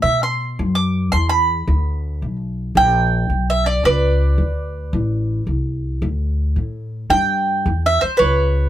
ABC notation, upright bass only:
X:1
M:4/4
L:1/8
Q:"Swing" 1/4=110
K:Edor
V:1 name="Upright bass" clef=bass
B,,2 F,,2 E,,2 D,,2 | B,,,2 _B,,,2 =B,,,2 C,,2 | D,,2 A,,,2 =C,,2 D,,2 | A,,2 G,,2 E,, z C,,2 |]